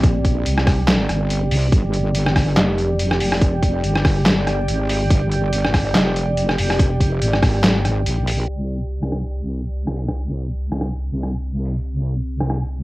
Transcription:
Already playing: A#1 C4 G4 D5
0.03 kick, closed hi-hat
0.25 kick, closed hi-hat
0.46 C2, closed hi-hat
0.58 cross-stick
0.67 kick, cross-stick, open hi-hat
0.88 snare, clap, closed hi-hat
1.09 G1, cross-stick, closed hi-hat
1.30 closed hi-hat
1.51 C2, open hi-hat
1.72 G1 D5 G5, kick, closed hi-hat
1.94 closed hi-hat
2.15 closed hi-hat
2.27 cross-stick
2.36 kick, cross-stick, open hi-hat
2.57 F1, snare, clap, closed hi-hat
2.78 closed hi-hat
2.99 closed hi-hat
3.11 cross-stick
3.20 F1, open hi-hat
3.32 cross-stick
3.41 kick, closed hi-hat
3.63 kick, closed hi-hat
3.84 G1, closed hi-hat
3.95 cross-stick
4.05 kick, cross-stick, open hi-hat
4.26 snare, clap, closed hi-hat
4.47 cross-stick, closed hi-hat
4.68 G#1, closed hi-hat
4.89 open hi-hat
5.10 G1, kick, closed hi-hat
5.32 closed hi-hat
5.53 closed hi-hat
5.64 cross-stick
5.74 kick, cross-stick, open hi-hat
5.95 F1, snare, clap, closed hi-hat
6.16 closed hi-hat
6.37 closed hi-hat
6.49 cross-stick
6.58 F1, open hi-hat
6.70 cross-stick
6.79 kick, closed hi-hat
7.00 kick, closed hi-hat
7.22 G#1, closed hi-hat
7.34 cross-stick
7.43 kick, cross-stick, open hi-hat
7.64 snare, clap, closed hi-hat
7.85 cross-stick, closed hi-hat
8.06 A#1, closed hi-hat
8.27 open hi-hat
8.49 C2 C4 G4 D5
9.03 cross-stick
9.12 cross-stick, open hi-hat
9.87 cross-stick
9.96 open hi-hat
10.08 cross-stick
10.72 cross-stick
10.81 cross-stick, open hi-hat
11.23 cross-stick
11.65 open hi-hat
12.41 cross-stick
12.50 cross-stick, open hi-hat

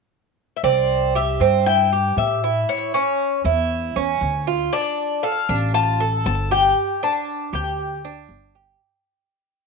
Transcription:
0.57 E5
0.63 C2 C4 D5
1.15 G4 E5
1.40 G2 C4
1.66 E4 G5
1.92 G4
2.17 A2 E5
2.44 E4
2.69 C#5
2.94 C#4 C#5
3.44 E2 E4
3.96 E2 C#4
4.21 D2
4.47 F4
4.73 D4 D5
5.23 A4 F5
5.49 A1 D4
5.74 F4 A5
6.00 A4
6.26 G1 A5
6.51 G4 G5
7.03 D4 A5
7.53 D2 G4 G5
8.05 D4
8.29 G1
8.55 G4

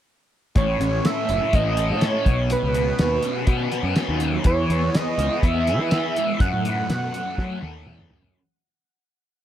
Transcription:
0.56 A1 A2 C#5, kick, closed hi-hat
0.80 A1 C#4, closed hi-hat
1.05 A4 E5, snare, closed hi-hat
1.29 F#1 E4, closed hi-hat
1.53 A1 C#4 D#5, kick, closed hi-hat
1.77 A4, closed hi-hat
1.90 A2
2.01 E4 C#5, snare, closed hi-hat
2.26 B1 B2, kick, closed hi-hat
2.50 B2 B4, closed hi-hat
2.63 C#2
2.75 B3, closed hi-hat
2.99 D#2 F#4, snare, closed hi-hat
3.23 C#4, closed hi-hat
3.47 B2 B3, kick, closed hi-hat
3.72 F#4, snare, closed hi-hat
3.83 F#2
3.96 C#4, snare, closed hi-hat
4.09 D#2
4.20 F#3, closed hi-hat
4.44 E2 E3 C#5, kick, closed hi-hat
4.70 E2 B3, closed hi-hat
4.95 G#4 D#5, snare, closed hi-hat
5.18 C#2 E4, closed hi-hat
5.43 E2 B3 E5, kick, closed hi-hat
5.67 G#4, snare, closed hi-hat
5.79 E3
5.91 E4, snare, closed hi-hat
6.16 G#3, closed hi-hat
6.40 F#2 F#5, kick, closed hi-hat
6.53 A2
6.65 A3, closed hi-hat
6.90 B2 A4, snare, closed hi-hat
7.14 C#4, closed hi-hat
7.38 F#3 A3, kick, snare
7.62 D#2 A4, high tom
7.86 E2 C#4, mid tom
7.99 mid tom
8.11 F#2 F#3, floor tom
8.23 floor tom

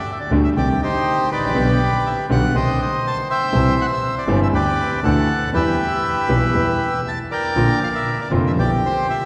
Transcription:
Already playing: D5 E5
0.12 E5
0.20 D5
0.31 D2 D3 G3 A3 G4
0.44 E5
0.57 C2 C3 D#3 G3 C4 G4 D5
0.82 D#4 G4 C5
1.31 A1 G4 B4 D5
1.38 G#1
1.43 A1
1.49 A#1
1.55 B1 B2 D3 G3 B3 G4
2.06 E5
2.29 B1 B2 D3 G3 B3 G4 F#5
2.54 C2 C3 D#3 G3 C4 G4 C5 D#5 G5
2.82 D#5
3.07 A5
3.30 C5 E5 G5
3.53 C2 C3 E3 G3 C4 G4
3.81 F#5
3.93 E5
4.18 D5
4.27 G1 G2 E3 G3 C4 G4
4.43 E5
4.53 D2 D3 G3 B3 G4 B4 D5
5.03 D2 D3 E3 A3 D4 F#4 A4 F#5
5.53 E2 E3 G3 B3 G4 B4 E5
6.28 B1 B2 E3 G3 B3 G4
6.54 E2 E3 G3 B3 G4
7.08 A5
7.31 A#4 D5 G5
7.56 A#1 A#2 D3 F3 A#3 F4
7.84 F5
7.95 E5
8.21 D5
8.31 F1 F2 D3 F3 A#3 F4
8.47 E5
8.57 B1 B2 D3 G3 B3 E4 G4 D5
8.86 C5
9.10 E5

